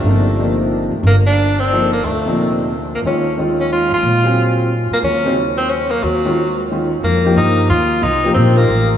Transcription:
Already playing: tenor saxophone A3
0.03 upright bass G1, grand piano C3 F3 A#3 D#4
0.39 grand piano C3 F3 A#3 D#4
0.91 upright bass D2
1.03 upright bass G1, tenor saxophone A#3
1.26 tenor saxophone D4
1.60 tenor saxophone C4
1.71 grand piano F3 A#3 D#4 A4
1.93 tenor saxophone A#3
2.03 upright bass D2, tenor saxophone A3
2.26 grand piano A#2 C3 F3 D#4
2.95 tenor saxophone A#3
3.03 upright bass D#2, grand piano D#3 G#3 C#4 F4
3.07 tenor saxophone C#4
3.38 grand piano D#3 G#3 C#4 F4
3.60 tenor saxophone C#4
3.73 tenor saxophone F4
3.90 upright bass C#2, tenor saxophone F4
4.03 upright bass A#2
4.24 grand piano F#3 C4 F4 G#4
4.91 tenor saxophone A#3, muted upright bass stroke
5.02 upright bass D#2, tenor saxophone C#4
5.25 grand piano C#3 F#3 C4 D#4
5.58 tenor saxophone C4
5.70 tenor saxophone C#4
5.90 tenor saxophone A#3
6.03 upright bass D#2, tenor saxophone F#3
6.25 grand piano D#3 G#3 C#4 F4
6.71 grand piano D#3 G#3 C#4 F4
7.03 upright bass F2, tenor saxophone A#3
7.24 grand piano F3 A#3 D#4 G4
7.36 upright bass G2, tenor saxophone D#4
7.69 upright bass D#2, tenor saxophone F4
8.02 upright bass C2, tenor saxophone D#4
8.24 grand piano F3 A#3 D#4 G4
8.34 upright bass A#1, tenor saxophone C4
8.57 tenor saxophone A#3
8.68 upright bass A1

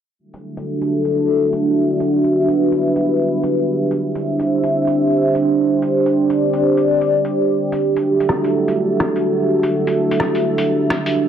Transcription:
0.19 analog synth pad D4 F#4 G4 A4 E5
0.34 closed hi-hat
0.57 closed hi-hat
0.82 closed hi-hat
1.05 closed hi-hat
1.53 closed hi-hat
2.00 closed hi-hat
2.10 analog synth pad B4
2.24 closed hi-hat
2.48 closed hi-hat
2.72 closed hi-hat
2.96 closed hi-hat
3.43 closed hi-hat
3.91 closed hi-hat
4.01 analog synth pad D4 C5 E5
4.15 closed hi-hat
4.40 closed hi-hat
4.63 closed hi-hat
4.87 closed hi-hat
5.35 closed hi-hat
5.82 closed hi-hat
5.89 analog synth pad D5
6.06 closed hi-hat
6.30 closed hi-hat
6.53 closed hi-hat
6.77 closed hi-hat
7.01 closed hi-hat
7.25 closed hi-hat
7.72 closed hi-hat
7.81 analog synth pad D4 F#4 A4 E5
7.96 closed hi-hat
8.20 closed hi-hat
8.29 cross-stick
8.44 closed hi-hat
8.68 closed hi-hat
9.00 cross-stick
9.16 closed hi-hat
9.63 closed hi-hat
9.87 closed hi-hat
10.11 closed hi-hat
10.20 cross-stick
10.35 closed hi-hat
10.58 closed hi-hat
10.90 cross-stick
11.06 closed hi-hat

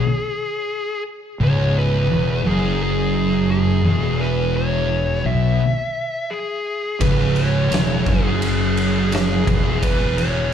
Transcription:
Already playing: lead electric guitar G#4
1.40 fingered electric bass C#1, distorted electric guitar C#2, lead electric guitar C#5
1.78 lead electric guitar B4
2.10 fingered electric bass E1, distorted electric guitar E2
2.45 fingered electric bass F#1, distorted electric guitar F#2, lead electric guitar G#4
2.83 lead electric guitar G#4
3.51 lead electric guitar G#4
3.85 fingered electric bass E1, distorted electric guitar E2
4.21 lead electric guitar B4
4.57 lead electric guitar C#5
5.25 fingered electric bass B1, distorted electric guitar B2, lead electric guitar E5
6.31 lead electric guitar G#4
7.01 fingered electric bass C#1, distorted electric guitar C#2, lead electric guitar B4, kick, ride
7.36 lead electric guitar C#5, ride
7.71 fingered electric bass E1, distorted electric guitar E2, snare, ride
8.06 fingered electric bass F#1, distorted electric guitar F#2, lead electric guitar G#4, kick, ride
8.42 ride
8.77 ride
9.12 lead electric guitar G#4, snare, ride
9.47 fingered electric bass E1, distorted electric guitar E2, kick, ride
9.83 lead electric guitar B4, kick, ride
10.18 lead electric guitar C#5, ride

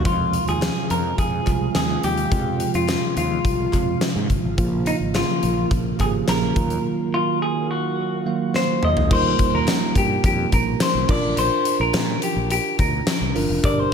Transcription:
Already playing: string machine F5
0.04 fretless electric bass F2, tine electric piano C3 F3 G#3 F4, string machine C3 F3 G#3, clean electric guitar F4, kick, closed hi-hat
0.33 closed hi-hat
0.48 fretless electric bass D#2, clean electric guitar G#4, closed hi-hat
0.62 snare, clap, closed hi-hat
0.90 fretless electric bass F2, clean electric guitar A#4, closed hi-hat
1.18 fretless electric bass F2, clean electric guitar G#4, kick, closed hi-hat
1.46 fretless electric bass C2, tine electric piano C3 F3 G#3 F4, kick, clap, closed hi-hat
1.75 fretless electric bass D#2, clean electric guitar G#4, snare, clap, closed hi-hat
2.03 fretless electric bass D#2, clean electric guitar G4, closed hi-hat
2.17 closed hi-hat
2.31 fretless electric bass F2, tine electric piano C3 F3 G#3 F4, kick, closed hi-hat
2.60 closed hi-hat
2.74 fretless electric bass F2, clean electric guitar F4, closed hi-hat
2.88 snare, clap, closed hi-hat
3.17 fretless electric bass D#2, clean electric guitar F4, closed hi-hat
3.45 fretless electric bass C2, kick, closed hi-hat
3.72 fretless electric bass F2, tine electric piano C3 F3 G#3 F4, kick, clap, closed hi-hat
4.01 snare, clap, closed hi-hat
4.16 fretless electric bass G#2
4.30 fretless electric bass G1, kick, closed hi-hat
4.44 fretless electric bass G#1
4.57 fretless electric bass A#1, tine electric piano C#3 F3 A#3 F4, string machine C#3 A#3, kick, closed hi-hat
4.86 clean electric guitar D#4, closed hi-hat
5.01 fretless electric bass G#1
5.15 clean electric guitar F4, snare, clap, closed hi-hat
5.43 fretless electric bass A#1, closed hi-hat
5.71 fretless electric bass A#1, kick, closed hi-hat
5.99 fretless electric bass G#1, tine electric piano C#3 F3 A#3 G4, clean electric guitar G#4, kick, clap, closed hi-hat
6.06 tine electric piano G#4
6.28 fretless electric bass A#1, clean electric guitar A#4, snare, clap, closed hi-hat
6.56 fretless electric bass D#2, tine electric piano D#3 F#3 A#3 F4, string machine D#3 F#3 F5, kick, closed hi-hat
6.70 closed hi-hat
7.14 clean electric guitar F4
7.42 clean electric guitar G#4
7.71 clean electric guitar F#4
8.25 tine electric piano D#3 F#3 A#3 F5
8.54 clean electric guitar C5, snare
8.83 clean electric guitar D#5, mid tom
8.97 floor tom
9.10 fretless electric bass D#2, tine electric piano G3 A#3 D#4 F4 A#4, clean electric guitar C5, kick, crash
9.39 kick, closed hi-hat
9.53 fretless electric bass D#2, clean electric guitar A#4
9.67 snare, clap, closed hi-hat, tambourine
9.95 fretless electric bass G2, clean electric guitar G4, kick, closed hi-hat
10.24 fretless electric bass F2, clean electric guitar G4, kick, closed hi-hat
10.52 fretless electric bass A#1, clean electric guitar A#4, kick, closed hi-hat
10.80 clean electric guitar C5, snare, clap, closed hi-hat, tambourine
10.95 fretless electric bass C2
11.08 fretless electric bass A#1, tine electric piano D4 F4 A#4, clean electric guitar D5, kick, crash
11.23 fretless electric bass A1
11.37 fretless electric bass A#1, clean electric guitar C5, closed hi-hat
11.65 closed hi-hat
11.80 fretless electric bass A#1, clean electric guitar A#4
11.93 fretless electric bass A#2, snare, clap, closed hi-hat, tambourine
12.22 clean electric guitar G4, closed hi-hat
12.36 fretless electric bass A#1
12.50 clean electric guitar G4, closed hi-hat
12.79 fretless electric bass D2, clean electric guitar A#4, kick, closed hi-hat
13.07 snare, clap, closed hi-hat, tambourine
13.21 fretless electric bass C2
13.35 fretless electric bass G1, tine electric piano D4 F4 A#4, open hi-hat
13.49 fretless electric bass F1
13.63 fretless electric bass G1, tine electric piano D4 G4 A#4, clean electric guitar D5, kick, closed hi-hat
13.79 clean electric guitar C5

